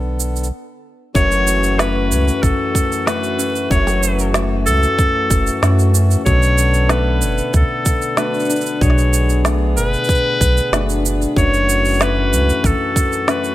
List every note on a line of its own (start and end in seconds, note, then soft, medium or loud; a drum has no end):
0.00 0.51 B1 medium
0.00 0.48 D3 medium
0.00 0.48 B3 medium
0.00 0.48 A4 medium
0.20 cabasa medium
0.36 cabasa soft
0.44 cabasa soft
1.14 2.13 F#1 medium
1.14 3.69 F#2 medium
1.14 6.22 E3 medium
1.14 6.22 A3 medium
1.14 6.22 F#4 medium
1.14 1.81 C#5 loud
1.14 kick loud
1.14 cabasa soft
1.32 cabasa soft
1.47 cabasa medium
1.63 cabasa soft
1.78 3.06 A3 medium
1.78 2.44 B4 loud
1.78 snare loud
1.78 cabasa soft
2.11 2.31 C#2 medium
2.11 cabasa medium
2.28 cabasa soft
2.43 2.53 A1 medium
2.43 3.08 A4 loud
2.43 kick loud
2.43 cabasa soft
2.75 kick medium
2.75 cabasa medium
2.92 cabasa soft
3.06 4.34 A3 medium
3.06 3.38 C#4 medium
3.06 5.63 F#4 medium
3.06 3.71 B4 medium
3.06 snare medium
3.06 cabasa soft
3.24 cabasa soft
3.38 5.62 C#4 medium
3.38 cabasa medium
3.56 cabasa soft
3.70 4.68 F#1 medium
3.70 6.31 F#2 medium
3.70 4.31 C#5 loud
3.70 kick loud
3.70 cabasa soft
3.87 snare soft
3.87 cabasa soft
4.03 cabasa medium
4.19 cabasa soft
4.34 5.62 A3 medium
4.34 snare loud
4.34 cabasa soft
4.66 4.87 C#2 medium
4.66 5.90 A4 loud
4.66 cabasa medium
4.83 cabasa soft
4.99 kick loud
4.99 cabasa soft
5.30 5.50 F#1 medium
5.30 kick loud
5.30 cabasa medium
5.47 cabasa soft
5.62 6.17 F#2 loud
5.62 6.89 A3 medium
5.62 5.94 C#4 medium
5.62 8.18 F#4 medium
5.62 snare loud
5.62 cabasa soft
5.79 cabasa soft
5.94 8.24 C#4 medium
5.94 cabasa medium
6.11 cabasa soft
6.26 7.23 B1 medium
6.26 8.80 B2 medium
6.26 11.33 D3 medium
6.26 11.33 B3 medium
6.26 8.79 A4 medium
6.26 6.92 C#5 loud
6.26 kick loud
6.26 cabasa soft
6.42 cabasa soft
6.58 cabasa medium
6.74 cabasa soft
6.89 8.17 A3 medium
6.89 7.54 B4 medium
6.89 snare loud
6.89 cabasa soft
7.22 7.42 F#1 medium
7.22 cabasa medium
7.38 cabasa soft
7.54 7.64 D2 medium
7.54 8.20 A4 medium
7.54 kick loud
7.54 cabasa soft
7.86 kick loud
7.86 cabasa medium
8.02 cabasa soft
8.17 9.44 A3 medium
8.17 8.49 D4 medium
8.17 10.73 F#4 medium
8.17 8.84 B4 medium
8.17 snare loud
8.17 cabasa soft
8.34 cabasa soft
8.40 cabasa soft
8.45 cabasa soft
8.49 10.73 D4 medium
8.49 cabasa medium
8.56 cabasa soft
8.61 cabasa soft
8.66 cabasa soft
8.81 9.78 B1 medium
8.81 11.42 B2 medium
8.81 11.34 G#4 medium
8.81 9.46 C#5 loud
8.81 kick loud
8.81 cabasa soft
8.90 snare soft
8.98 cabasa soft
9.13 cabasa medium
9.29 cabasa soft
9.45 10.72 A3 medium
9.45 snare loud
9.45 cabasa soft
9.76 9.97 F#1 medium
9.76 11.01 B4 loud
9.76 cabasa medium
9.93 cabasa soft
10.04 cabasa soft
10.09 kick loud
10.09 cabasa soft
10.15 cabasa soft
10.41 10.61 B1 medium
10.41 kick loud
10.41 cabasa medium
10.57 cabasa soft
10.72 11.27 F#1 medium
10.72 12.00 A3 medium
10.72 11.04 D4 medium
10.72 13.29 F#4 medium
10.72 snare medium
10.72 cabasa soft
10.89 cabasa soft
11.04 13.34 D4 medium
11.04 cabasa medium
11.22 cabasa soft
11.36 12.34 F#1 loud
11.36 13.55 F#2 medium
11.36 13.55 E3 medium
11.36 13.55 A3 medium
11.36 13.55 F#4 medium
11.36 12.04 C#5 loud
11.36 kick loud
11.36 cabasa soft
11.54 cabasa soft
11.69 cabasa medium
11.85 cabasa soft
11.88 cabasa soft
11.91 cabasa soft
11.93 cabasa soft
11.96 cabasa soft
11.99 13.27 A3 medium
11.99 snare loud
11.99 cabasa soft
12.01 12.68 B4 loud
12.01 cabasa soft
12.32 12.52 C#2 medium
12.32 cabasa medium
12.49 cabasa soft
12.64 12.74 A1 medium
12.64 13.31 A4 loud
12.64 kick loud
12.64 cabasa soft
12.96 kick loud
12.96 cabasa medium
13.13 cabasa soft
13.28 13.55 A3 medium
13.28 13.55 C#4 medium
13.28 13.55 F#4 medium
13.28 13.55 B4 loud
13.28 snare loud
13.28 cabasa soft
13.44 cabasa soft